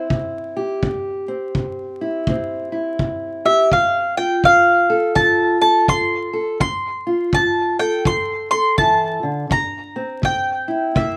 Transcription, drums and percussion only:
0.10 kick
0.83 kick
1.55 kick
2.27 kick
2.99 kick
3.72 kick
4.44 kick
5.16 kick
5.88 kick
6.61 kick
7.33 kick
8.05 kick
8.78 kick
9.51 kick
10.23 kick
10.96 kick

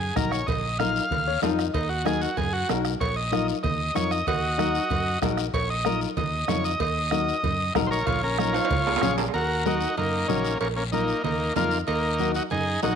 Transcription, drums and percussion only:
0.16 bombo low, bombo rim, high conga, low conga, short guiro
0.32 bombo rim, short guiro
0.48 bombo low, cowbell, high conga, low conga, long guiro
0.80 bombo rim, high conga, short guiro
0.96 short guiro
1.11 bombo low, cowbell, high conga, low conga, long guiro
1.43 bombo rim, high conga, low timbale, short guiro
1.59 bombo rim, short guiro
1.74 bombo low, cowbell, high conga, long guiro
2.06 bombo rim, high conga, short guiro
2.22 short guiro
2.37 bombo low, cowbell, high conga, low conga, long guiro
2.69 bombo rim, high conga, low timbale, short guiro
2.85 bombo rim, short guiro
3.01 bombo low, cowbell, long guiro
3.32 bombo rim, high conga, short guiro
3.48 short guiro
3.64 bombo low, cowbell, high conga, low conga, long guiro
3.96 bombo rim, high conga, short guiro
4.11 bombo rim, short guiro
4.27 bombo low, cowbell, high conga, low conga, long guiro
4.59 bombo rim, high conga, short guiro
4.75 short guiro
4.90 bombo low, cowbell, high conga, low conga, long guiro
5.22 bombo low, bombo rim, high conga, low timbale, short guiro
5.37 bombo rim, short guiro
5.54 bombo low, cowbell, long guiro
5.85 bombo rim, high conga, short guiro
6.01 short guiro
6.17 bombo low, cowbell, high conga, low conga, long guiro
6.48 bombo rim, high conga, low conga, low timbale, short guiro
6.64 short guiro
6.80 bombo low, cowbell, high conga, long guiro
7.11 bombo rim, high conga, short guiro
7.29 short guiro
7.43 bombo low, cowbell, high conga, low conga, long guiro
7.75 bombo low, bombo rim, high conga, low conga, low timbale, short guiro
7.92 short guiro
8.07 bombo low, cowbell, high conga, low conga, long guiro
8.38 bombo rim, high conga, short guiro
8.54 high timbale, short guiro
8.65 high timbale
8.70 bombo low, cowbell, high conga, low conga, long guiro
8.87 low timbale
8.96 low timbale
9.02 bombo rim, high conga, low conga, short guiro
9.18 low timbale, short guiro
9.28 low timbale
9.34 cowbell, high conga, long guiro
9.66 high conga, short guiro
9.81 short guiro
9.97 cowbell, high conga, low conga, long guiro
10.29 high conga, low conga, short guiro
10.45 short guiro
10.61 cowbell, long guiro
10.92 high conga, short guiro
11.08 short guiro
11.25 cowbell, high conga, low conga, long guiro
11.56 high conga, low conga, low timbale, short guiro
11.71 short guiro
11.87 cowbell, high conga, long guiro
12.19 high conga, short guiro
12.34 short guiro
12.50 cowbell, high conga, low conga, long guiro
12.83 high conga, low timbale, short guiro

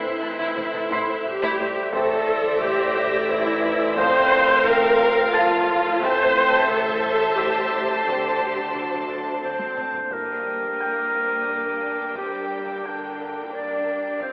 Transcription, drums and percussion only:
0.39 taiko
0.57 taiko mid
0.74 taiko mid
0.91 taiko
1.42 taiko
1.93 taiko
2.44 taiko
2.61 taiko mid
2.78 taiko mid
2.95 taiko
3.46 taiko
3.97 taiko
4.48 taiko
4.66 taiko mid
4.82 taiko mid
5.00 taiko
5.51 taiko
6.02 taiko
6.53 taiko
6.70 taiko mid
6.87 taiko mid
7.04 taiko
7.56 taiko
8.07 taiko
8.58 taiko
8.75 taiko mid
8.92 taiko mid
9.09 taiko
9.60 taiko high
9.77 taiko low-mid
9.94 taiko low
10.11 taiko
10.62 taiko
11.65 taiko
12.15 taiko
12.67 taiko
13.69 taiko
14.20 taiko

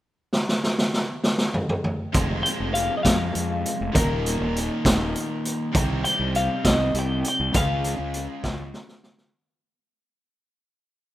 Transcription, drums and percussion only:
0.33 snare
0.49 snare
0.63 snare
0.78 snare
0.94 snare
1.24 snare
1.38 snare
1.54 mid tom
1.69 mid tom
1.84 mid tom
2.14 kick, closed hi-hat
2.46 closed hi-hat
2.75 closed hi-hat
3.05 kick, snare, closed hi-hat
3.35 closed hi-hat
3.66 closed hi-hat
3.95 kick, closed hi-hat
4.26 closed hi-hat
4.56 closed hi-hat
4.85 kick, snare, closed hi-hat
5.15 closed hi-hat
5.45 closed hi-hat
5.75 kick, closed hi-hat
6.05 closed hi-hat
6.35 closed hi-hat
6.65 kick, snare, closed hi-hat
6.95 closed hi-hat
7.24 closed hi-hat
7.54 kick, closed hi-hat
7.84 closed hi-hat
8.14 closed hi-hat
8.44 kick, snare
8.74 snare
8.88 snare
9.04 snare
9.18 snare

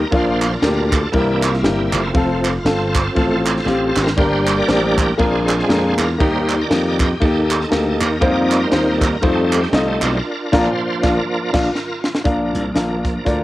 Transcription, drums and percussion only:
0.12 kick, ride
0.42 clap, ride
0.63 snare, ride
0.92 kick, snare, clap, ride
1.13 kick, ride
1.43 clap, ride
1.54 snare
1.64 snare, ride
1.93 clap, ride
2.15 kick, ride
2.44 clap, ride
2.66 snare, ride
2.95 kick, snare, clap, ride
3.16 kick, ride
3.46 clap, ride
3.56 snare
3.67 snare
3.96 snare, clap
4.07 snare
4.18 kick, ride
4.47 clap, ride
4.68 snare, ride
4.98 kick, clap, ride
5.19 kick, ride
5.48 clap, ride
5.59 snare
5.70 snare, ride
5.99 clap, ride
6.20 kick, ride
6.49 clap, ride
6.71 snare, ride
7.00 kick, snare, clap, ride
7.21 kick, ride
7.50 clap, ride
7.61 snare
7.72 snare, ride
8.01 clap, ride
8.22 kick, ride
8.51 clap, ride
8.72 snare, ride
9.01 kick, clap, ride
9.22 kick, ride
9.52 clap, ride
9.63 snare
9.73 snare, ride
10.02 clap, ride
10.53 kick, snare, crash
11.03 kick, snare
11.54 kick, snare, crash
11.75 snare
12.04 snare
12.15 snare
12.25 kick, closed hi-hat
12.55 closed hi-hat
12.76 snare, closed hi-hat
13.05 kick, snare, closed hi-hat
13.26 kick, closed hi-hat

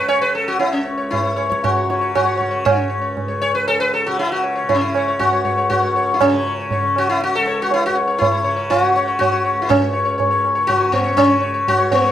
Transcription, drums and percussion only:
0.09 tabla na
0.60 tabla tin
1.13 tabla tin, tabla ge
1.38 tabla na
1.52 tabla ke
1.64 tabla na, tabla ge
1.90 tabla te
2.15 tabla na, tabla ge
2.41 tabla ge
2.66 tabla na, tabla ge
3.17 tabla tin, tabla ge
3.43 tabla na
3.68 tabla na
3.93 tabla na
4.18 tabla tin
4.69 tabla tin, tabla ge
4.95 tabla na
5.20 tabla na, tabla ge
5.45 tabla ge
5.71 tabla tin, tabla ge
6.21 tabla na, tabla ge
6.71 tabla tin, tabla ge
6.96 tabla na
7.21 tabla te
7.46 tabla te
7.71 tabla tin
8.22 tabla tin, tabla ge
8.71 tabla na, tabla ge
8.96 tabla te
9.21 tabla tin, tabla ge
9.70 tabla na, tabla ge
10.20 tabla tin, tabla ge
10.44 tabla na
10.69 tabla tin, tabla ge
10.93 tabla tin, tabla ge
11.18 tabla na, tabla ge
11.68 tabla tin, tabla ge
11.91 tabla tin, tabla ge

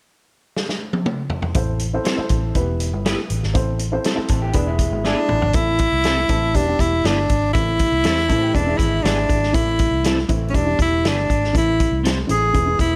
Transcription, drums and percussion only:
0.56 snare
0.69 snare
0.93 high tom
1.06 mid tom
1.30 floor tom
1.42 floor tom
1.54 kick, closed hi-hat
1.79 closed hi-hat
2.05 snare, closed hi-hat
2.29 kick, closed hi-hat
2.55 kick, closed hi-hat
2.80 closed hi-hat
3.06 snare, closed hi-hat
3.30 closed hi-hat
3.43 snare
3.55 kick, closed hi-hat
3.79 closed hi-hat
4.04 snare, closed hi-hat
4.28 kick, closed hi-hat
4.53 kick, closed hi-hat
4.79 kick, closed hi-hat
5.05 snare
5.29 mid tom
5.42 floor tom
5.53 kick, closed hi-hat
5.79 kick, closed hi-hat
6.04 snare, closed hi-hat
6.29 kick, closed hi-hat
6.55 kick, closed hi-hat
6.79 kick, closed hi-hat
7.05 snare, closed hi-hat
7.29 kick, closed hi-hat
7.55 kick, closed hi-hat
7.79 kick, closed hi-hat
8.04 snare, closed hi-hat
8.19 snare
8.29 kick, closed hi-hat
8.55 kick, closed hi-hat
8.79 kick, closed hi-hat
9.05 snare, closed hi-hat
9.29 kick, closed hi-hat
9.43 snare
9.54 kick, closed hi-hat
9.79 kick, closed hi-hat
10.04 snare, closed hi-hat
10.18 snare
10.29 kick, closed hi-hat
10.54 kick, closed hi-hat
10.79 kick, closed hi-hat
11.05 snare, closed hi-hat
11.30 kick, closed hi-hat
11.44 snare
11.55 kick, closed hi-hat
11.80 kick, closed hi-hat
12.05 snare, closed hi-hat
12.29 closed hi-hat
12.54 kick, closed hi-hat
12.79 kick, closed hi-hat

